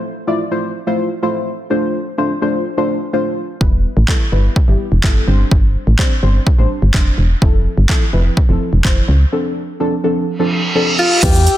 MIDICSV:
0, 0, Header, 1, 7, 480
1, 0, Start_track
1, 0, Tempo, 476190
1, 1718, Time_signature, 4, 2, 24, 8
1, 11668, End_track
2, 0, Start_track
2, 0, Title_t, "Ambient pad"
2, 0, Program_c, 0, 92
2, 11319, Note_on_c, 0, 71, 85
2, 11319, Note_on_c, 0, 76, 74
2, 11319, Note_on_c, 0, 79, 77
2, 11319, Note_on_c, 0, 88, 94
2, 11668, Note_off_c, 0, 71, 0
2, 11668, Note_off_c, 0, 76, 0
2, 11668, Note_off_c, 0, 79, 0
2, 11668, Note_off_c, 0, 88, 0
2, 11668, End_track
3, 0, Start_track
3, 0, Title_t, "Alto saxophone"
3, 0, Program_c, 1, 65
3, 11079, Note_on_c, 1, 65, 89
3, 11319, Note_on_c, 1, 67, 98
3, 11334, Note_off_c, 1, 65, 0
3, 11668, Note_off_c, 1, 67, 0
3, 11668, End_track
4, 0, Start_track
4, 0, Title_t, "Synth stab"
4, 0, Program_c, 2, 62
4, 274, Note_on_c, 2, 57, 83
4, 276, Note_on_c, 2, 64, 81
4, 278, Note_on_c, 2, 65, 77
4, 280, Note_on_c, 2, 74, 93
4, 416, Note_off_c, 2, 57, 0
4, 417, Note_off_c, 2, 64, 0
4, 418, Note_off_c, 2, 65, 0
4, 419, Note_off_c, 2, 74, 0
4, 515, Note_on_c, 2, 57, 83
4, 517, Note_on_c, 2, 64, 80
4, 519, Note_on_c, 2, 65, 77
4, 520, Note_on_c, 2, 72, 87
4, 727, Note_off_c, 2, 57, 0
4, 728, Note_off_c, 2, 64, 0
4, 729, Note_off_c, 2, 65, 0
4, 729, Note_off_c, 2, 72, 0
4, 875, Note_on_c, 2, 57, 83
4, 877, Note_on_c, 2, 64, 78
4, 878, Note_on_c, 2, 65, 81
4, 880, Note_on_c, 2, 72, 96
4, 1087, Note_off_c, 2, 57, 0
4, 1088, Note_off_c, 2, 64, 0
4, 1088, Note_off_c, 2, 65, 0
4, 1089, Note_off_c, 2, 72, 0
4, 1234, Note_on_c, 2, 57, 87
4, 1236, Note_on_c, 2, 64, 79
4, 1238, Note_on_c, 2, 65, 78
4, 1240, Note_on_c, 2, 72, 96
4, 1517, Note_off_c, 2, 57, 0
4, 1518, Note_off_c, 2, 64, 0
4, 1519, Note_off_c, 2, 65, 0
4, 1519, Note_off_c, 2, 72, 0
4, 1715, Note_on_c, 2, 57, 86
4, 1717, Note_on_c, 2, 62, 75
4, 1718, Note_on_c, 2, 65, 72
4, 1720, Note_on_c, 2, 72, 90
4, 1997, Note_off_c, 2, 57, 0
4, 1998, Note_off_c, 2, 62, 0
4, 1999, Note_off_c, 2, 65, 0
4, 1999, Note_off_c, 2, 72, 0
4, 2195, Note_on_c, 2, 57, 83
4, 2197, Note_on_c, 2, 62, 80
4, 2198, Note_on_c, 2, 65, 73
4, 2200, Note_on_c, 2, 72, 94
4, 2337, Note_off_c, 2, 57, 0
4, 2338, Note_off_c, 2, 62, 0
4, 2338, Note_off_c, 2, 65, 0
4, 2339, Note_off_c, 2, 72, 0
4, 2436, Note_on_c, 2, 57, 80
4, 2438, Note_on_c, 2, 62, 78
4, 2439, Note_on_c, 2, 65, 75
4, 2441, Note_on_c, 2, 72, 94
4, 2647, Note_off_c, 2, 57, 0
4, 2648, Note_off_c, 2, 62, 0
4, 2649, Note_off_c, 2, 65, 0
4, 2650, Note_off_c, 2, 72, 0
4, 2795, Note_on_c, 2, 57, 86
4, 2797, Note_on_c, 2, 62, 81
4, 2798, Note_on_c, 2, 65, 79
4, 2800, Note_on_c, 2, 72, 89
4, 3007, Note_off_c, 2, 57, 0
4, 3008, Note_off_c, 2, 62, 0
4, 3008, Note_off_c, 2, 65, 0
4, 3009, Note_off_c, 2, 72, 0
4, 3155, Note_on_c, 2, 57, 86
4, 3157, Note_on_c, 2, 62, 75
4, 3159, Note_on_c, 2, 65, 80
4, 3160, Note_on_c, 2, 72, 93
4, 3437, Note_off_c, 2, 57, 0
4, 3438, Note_off_c, 2, 62, 0
4, 3439, Note_off_c, 2, 65, 0
4, 3440, Note_off_c, 2, 72, 0
4, 3634, Note_on_c, 2, 55, 83
4, 3636, Note_on_c, 2, 59, 75
4, 3638, Note_on_c, 2, 64, 78
4, 3640, Note_on_c, 2, 71, 92
4, 3917, Note_off_c, 2, 55, 0
4, 3917, Note_off_c, 2, 59, 0
4, 3918, Note_off_c, 2, 64, 0
4, 3919, Note_off_c, 2, 71, 0
4, 4116, Note_on_c, 2, 55, 88
4, 4117, Note_on_c, 2, 59, 77
4, 4119, Note_on_c, 2, 64, 76
4, 4121, Note_on_c, 2, 69, 95
4, 4257, Note_off_c, 2, 55, 0
4, 4258, Note_off_c, 2, 59, 0
4, 4259, Note_off_c, 2, 64, 0
4, 4260, Note_off_c, 2, 69, 0
4, 4356, Note_on_c, 2, 55, 84
4, 4358, Note_on_c, 2, 59, 76
4, 4359, Note_on_c, 2, 64, 78
4, 4361, Note_on_c, 2, 71, 91
4, 4567, Note_off_c, 2, 55, 0
4, 4568, Note_off_c, 2, 59, 0
4, 4569, Note_off_c, 2, 64, 0
4, 4570, Note_off_c, 2, 71, 0
4, 4717, Note_on_c, 2, 55, 85
4, 4718, Note_on_c, 2, 59, 79
4, 4720, Note_on_c, 2, 64, 76
4, 4722, Note_on_c, 2, 67, 90
4, 4928, Note_off_c, 2, 55, 0
4, 4929, Note_off_c, 2, 59, 0
4, 4929, Note_off_c, 2, 64, 0
4, 4930, Note_off_c, 2, 67, 0
4, 5076, Note_on_c, 2, 55, 83
4, 5077, Note_on_c, 2, 59, 78
4, 5079, Note_on_c, 2, 64, 79
4, 5081, Note_on_c, 2, 69, 97
4, 5305, Note_off_c, 2, 55, 0
4, 5317, Note_on_c, 2, 55, 88
4, 5318, Note_off_c, 2, 59, 0
4, 5318, Note_off_c, 2, 64, 0
4, 5318, Note_on_c, 2, 60, 83
4, 5319, Note_off_c, 2, 69, 0
4, 5320, Note_on_c, 2, 62, 77
4, 5322, Note_on_c, 2, 72, 97
4, 5893, Note_off_c, 2, 55, 0
4, 5894, Note_off_c, 2, 60, 0
4, 5895, Note_off_c, 2, 62, 0
4, 5896, Note_off_c, 2, 72, 0
4, 6036, Note_on_c, 2, 55, 85
4, 6037, Note_on_c, 2, 60, 77
4, 6039, Note_on_c, 2, 62, 77
4, 6041, Note_on_c, 2, 72, 92
4, 6177, Note_off_c, 2, 55, 0
4, 6178, Note_off_c, 2, 60, 0
4, 6179, Note_off_c, 2, 62, 0
4, 6180, Note_off_c, 2, 72, 0
4, 6276, Note_on_c, 2, 55, 85
4, 6278, Note_on_c, 2, 60, 76
4, 6280, Note_on_c, 2, 62, 76
4, 6281, Note_on_c, 2, 72, 94
4, 6487, Note_off_c, 2, 55, 0
4, 6488, Note_off_c, 2, 60, 0
4, 6489, Note_off_c, 2, 62, 0
4, 6490, Note_off_c, 2, 72, 0
4, 6636, Note_on_c, 2, 55, 84
4, 6638, Note_on_c, 2, 60, 78
4, 6640, Note_on_c, 2, 62, 79
4, 6642, Note_on_c, 2, 72, 94
4, 6847, Note_off_c, 2, 55, 0
4, 6848, Note_off_c, 2, 60, 0
4, 6849, Note_off_c, 2, 62, 0
4, 6850, Note_off_c, 2, 72, 0
4, 6996, Note_on_c, 2, 55, 84
4, 6998, Note_on_c, 2, 60, 80
4, 7000, Note_on_c, 2, 62, 82
4, 7001, Note_on_c, 2, 72, 92
4, 7277, Note_off_c, 2, 55, 0
4, 7279, Note_off_c, 2, 60, 0
4, 7279, Note_off_c, 2, 62, 0
4, 7280, Note_off_c, 2, 72, 0
4, 7476, Note_on_c, 2, 53, 80
4, 7478, Note_on_c, 2, 60, 73
4, 7479, Note_on_c, 2, 64, 78
4, 7481, Note_on_c, 2, 69, 90
4, 7758, Note_off_c, 2, 53, 0
4, 7758, Note_off_c, 2, 60, 0
4, 7759, Note_off_c, 2, 64, 0
4, 7760, Note_off_c, 2, 69, 0
4, 7956, Note_on_c, 2, 53, 85
4, 7958, Note_on_c, 2, 60, 78
4, 7960, Note_on_c, 2, 64, 80
4, 7962, Note_on_c, 2, 69, 94
4, 8097, Note_off_c, 2, 53, 0
4, 8098, Note_off_c, 2, 60, 0
4, 8099, Note_off_c, 2, 64, 0
4, 8100, Note_off_c, 2, 69, 0
4, 8196, Note_on_c, 2, 53, 84
4, 8197, Note_on_c, 2, 60, 76
4, 8199, Note_on_c, 2, 64, 73
4, 8201, Note_on_c, 2, 71, 93
4, 8407, Note_off_c, 2, 53, 0
4, 8408, Note_off_c, 2, 60, 0
4, 8409, Note_off_c, 2, 64, 0
4, 8410, Note_off_c, 2, 71, 0
4, 8556, Note_on_c, 2, 53, 85
4, 8558, Note_on_c, 2, 60, 79
4, 8560, Note_on_c, 2, 64, 80
4, 8561, Note_on_c, 2, 69, 94
4, 8767, Note_off_c, 2, 53, 0
4, 8768, Note_off_c, 2, 60, 0
4, 8769, Note_off_c, 2, 64, 0
4, 8770, Note_off_c, 2, 69, 0
4, 8916, Note_on_c, 2, 53, 89
4, 8917, Note_on_c, 2, 60, 77
4, 8919, Note_on_c, 2, 64, 80
4, 8921, Note_on_c, 2, 72, 93
4, 9197, Note_off_c, 2, 53, 0
4, 9198, Note_off_c, 2, 60, 0
4, 9199, Note_off_c, 2, 64, 0
4, 9200, Note_off_c, 2, 72, 0
4, 9397, Note_on_c, 2, 53, 85
4, 9398, Note_on_c, 2, 60, 75
4, 9400, Note_on_c, 2, 62, 76
4, 9401, Note_on_c, 2, 69, 90
4, 9678, Note_off_c, 2, 53, 0
4, 9679, Note_off_c, 2, 60, 0
4, 9679, Note_off_c, 2, 62, 0
4, 9680, Note_off_c, 2, 69, 0
4, 9877, Note_on_c, 2, 53, 88
4, 9878, Note_on_c, 2, 60, 78
4, 9880, Note_on_c, 2, 62, 77
4, 9882, Note_on_c, 2, 69, 90
4, 10018, Note_off_c, 2, 53, 0
4, 10018, Note_off_c, 2, 60, 0
4, 10019, Note_off_c, 2, 62, 0
4, 10020, Note_off_c, 2, 69, 0
4, 10117, Note_on_c, 2, 53, 83
4, 10119, Note_on_c, 2, 60, 75
4, 10120, Note_on_c, 2, 62, 75
4, 10122, Note_on_c, 2, 69, 91
4, 10328, Note_off_c, 2, 53, 0
4, 10329, Note_off_c, 2, 60, 0
4, 10329, Note_off_c, 2, 62, 0
4, 10330, Note_off_c, 2, 69, 0
4, 10476, Note_on_c, 2, 53, 83
4, 10478, Note_on_c, 2, 60, 76
4, 10479, Note_on_c, 2, 62, 78
4, 10481, Note_on_c, 2, 69, 96
4, 10687, Note_off_c, 2, 53, 0
4, 10688, Note_off_c, 2, 60, 0
4, 10689, Note_off_c, 2, 62, 0
4, 10690, Note_off_c, 2, 69, 0
4, 10836, Note_on_c, 2, 53, 84
4, 10838, Note_on_c, 2, 60, 80
4, 10839, Note_on_c, 2, 62, 81
4, 10842, Note_on_c, 2, 69, 95
4, 11117, Note_off_c, 2, 53, 0
4, 11119, Note_off_c, 2, 60, 0
4, 11119, Note_off_c, 2, 62, 0
4, 11120, Note_off_c, 2, 69, 0
4, 11316, Note_on_c, 2, 55, 71
4, 11318, Note_on_c, 2, 59, 68
4, 11319, Note_on_c, 2, 64, 69
4, 11321, Note_on_c, 2, 71, 80
4, 11527, Note_off_c, 2, 55, 0
4, 11528, Note_off_c, 2, 59, 0
4, 11529, Note_off_c, 2, 64, 0
4, 11530, Note_off_c, 2, 71, 0
4, 11668, End_track
5, 0, Start_track
5, 0, Title_t, "FM bass"
5, 0, Program_c, 3, 39
5, 3638, Note_on_c, 3, 28, 107
5, 3888, Note_off_c, 3, 28, 0
5, 3999, Note_on_c, 3, 33, 93
5, 4082, Note_off_c, 3, 33, 0
5, 4358, Note_on_c, 3, 31, 86
5, 4525, Note_off_c, 3, 31, 0
5, 4717, Note_on_c, 3, 31, 83
5, 4801, Note_off_c, 3, 31, 0
5, 4957, Note_on_c, 3, 28, 84
5, 5041, Note_off_c, 3, 28, 0
5, 5078, Note_on_c, 3, 31, 92
5, 5245, Note_off_c, 3, 31, 0
5, 5318, Note_on_c, 3, 31, 99
5, 5485, Note_off_c, 3, 31, 0
5, 5559, Note_on_c, 3, 31, 110
5, 5809, Note_off_c, 3, 31, 0
5, 5918, Note_on_c, 3, 33, 85
5, 6001, Note_off_c, 3, 33, 0
5, 6279, Note_on_c, 3, 31, 94
5, 6445, Note_off_c, 3, 31, 0
5, 6638, Note_on_c, 3, 33, 86
5, 6721, Note_off_c, 3, 33, 0
5, 6878, Note_on_c, 3, 31, 85
5, 6962, Note_off_c, 3, 31, 0
5, 6998, Note_on_c, 3, 29, 95
5, 7165, Note_off_c, 3, 29, 0
5, 7238, Note_on_c, 3, 28, 94
5, 7405, Note_off_c, 3, 28, 0
5, 7478, Note_on_c, 3, 29, 104
5, 7728, Note_off_c, 3, 29, 0
5, 7837, Note_on_c, 3, 31, 87
5, 7921, Note_off_c, 3, 31, 0
5, 8198, Note_on_c, 3, 29, 89
5, 8365, Note_off_c, 3, 29, 0
5, 8557, Note_on_c, 3, 29, 91
5, 8641, Note_off_c, 3, 29, 0
5, 8797, Note_on_c, 3, 28, 87
5, 8881, Note_off_c, 3, 28, 0
5, 8918, Note_on_c, 3, 29, 92
5, 9085, Note_off_c, 3, 29, 0
5, 9157, Note_on_c, 3, 37, 95
5, 9324, Note_off_c, 3, 37, 0
5, 11318, Note_on_c, 3, 40, 105
5, 11568, Note_off_c, 3, 40, 0
5, 11668, End_track
6, 0, Start_track
6, 0, Title_t, "Reverse cymbal"
6, 0, Program_c, 4, 119
6, 10358, Note_on_c, 4, 60, 78
6, 11318, Note_off_c, 4, 60, 0
6, 11668, End_track
7, 0, Start_track
7, 0, Title_t, "Drums"
7, 3638, Note_on_c, 9, 36, 104
7, 3739, Note_off_c, 9, 36, 0
7, 4116, Note_on_c, 9, 36, 113
7, 4119, Note_on_c, 9, 39, 113
7, 4217, Note_off_c, 9, 36, 0
7, 4220, Note_off_c, 9, 39, 0
7, 4598, Note_on_c, 9, 36, 99
7, 4698, Note_off_c, 9, 36, 0
7, 5078, Note_on_c, 9, 36, 120
7, 5080, Note_on_c, 9, 39, 109
7, 5179, Note_off_c, 9, 36, 0
7, 5180, Note_off_c, 9, 39, 0
7, 5558, Note_on_c, 9, 36, 102
7, 5659, Note_off_c, 9, 36, 0
7, 6036, Note_on_c, 9, 36, 109
7, 6040, Note_on_c, 9, 39, 106
7, 6137, Note_off_c, 9, 36, 0
7, 6141, Note_off_c, 9, 39, 0
7, 6518, Note_on_c, 9, 36, 103
7, 6619, Note_off_c, 9, 36, 0
7, 6998, Note_on_c, 9, 36, 120
7, 7000, Note_on_c, 9, 39, 107
7, 7098, Note_off_c, 9, 36, 0
7, 7100, Note_off_c, 9, 39, 0
7, 7478, Note_on_c, 9, 36, 103
7, 7579, Note_off_c, 9, 36, 0
7, 7956, Note_on_c, 9, 36, 113
7, 7960, Note_on_c, 9, 39, 110
7, 8057, Note_off_c, 9, 36, 0
7, 8060, Note_off_c, 9, 39, 0
7, 8438, Note_on_c, 9, 36, 100
7, 8538, Note_off_c, 9, 36, 0
7, 8918, Note_on_c, 9, 36, 119
7, 8919, Note_on_c, 9, 39, 106
7, 9018, Note_off_c, 9, 36, 0
7, 9020, Note_off_c, 9, 39, 0
7, 11318, Note_on_c, 9, 36, 106
7, 11318, Note_on_c, 9, 42, 76
7, 11318, Note_on_c, 9, 49, 92
7, 11318, Note_on_c, 9, 82, 78
7, 11419, Note_off_c, 9, 36, 0
7, 11419, Note_off_c, 9, 42, 0
7, 11419, Note_off_c, 9, 49, 0
7, 11419, Note_off_c, 9, 82, 0
7, 11438, Note_on_c, 9, 82, 58
7, 11539, Note_off_c, 9, 82, 0
7, 11559, Note_on_c, 9, 42, 56
7, 11559, Note_on_c, 9, 82, 57
7, 11660, Note_off_c, 9, 42, 0
7, 11660, Note_off_c, 9, 82, 0
7, 11668, End_track
0, 0, End_of_file